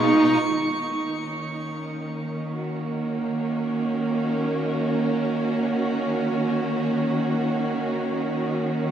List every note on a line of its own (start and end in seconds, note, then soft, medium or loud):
0.00 0.44 B2 medium
0.00 0.44 G#3 medium
0.00 2.57 D#4 medium
0.00 0.43 F4 medium
0.00 0.49 C#6 medium
0.00 0.48 C#7 medium
0.45 8.91 D#3 medium
0.82 8.91 A#3 medium
1.21 8.91 C#4 medium
2.55 8.91 F#4 medium